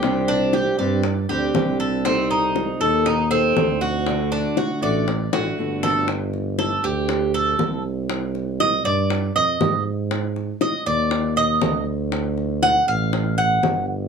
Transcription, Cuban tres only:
\new Staff \with { instrumentName = "Cuban tres" } { \time 4/4 \key c \dorian \tempo 4 = 119 g'8 d'8 g'8 d''4 g'4 a'8 | c'8 ees'4 a'8 ees'8 c'4 fis'8~ | fis'8 d'8 fis'8 d''4 fis'4 a'8 | r4 a'8 g'4 a'4 r8 |
r4 ees''8 d''4 ees''4 r8 | r4 ees''8 d''4 ees''4 r8 | r4 fis''8 f''4 fis''4 r8 | }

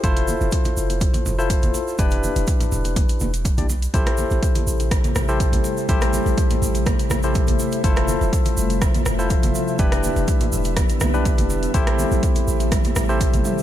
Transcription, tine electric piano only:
\new Staff \with { instrumentName = "Tine electric piano" } { \time 4/4 \key a \minor \tempo 4 = 123 <e' f' a' c''>2~ <e' f' a' c''>8. <e' f' a' c''>4~ <e' f' a' c''>16 | <d' e' g' b'>2~ <d' e' g' b'>8. r8 <d' e' g' d''>16 r8 | <e' g' a' c''>2~ <e' g' a' c''>8. <e' g' a' c''>4~ <e' g' a' c''>16 | <e' g' a' c''>2~ <e' g' a' c''>8. <e' g' a' c''>4~ <e' g' a' c''>16 |
<e' f' a' c''>2~ <e' f' a' c''>8. <e' f' a' c''>4~ <e' f' a' c''>16 | <d' e' g' b'>2~ <d' e' g' b'>8. <d' e' g' b'>4~ <d' e' g' b'>16 | <e' g' a' c''>2~ <e' g' a' c''>8. <e' g' a' c''>4~ <e' g' a' c''>16 | }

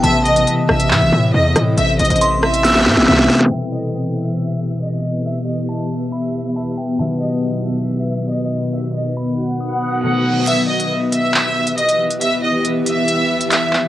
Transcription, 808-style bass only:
\new Staff \with { instrumentName = "808-style bass" } { \clef bass \time 4/4 \key e \minor \tempo 4 = 138 a,,4 r8 a,,8 a,16 a,,16 a,8 e,8 a,8 | a,,8 a,,16 a,,4.~ a,,16 a,16 a,,16 c,8 r8 | r1 | r1 |
r1 | r1 | r1 | r1 | }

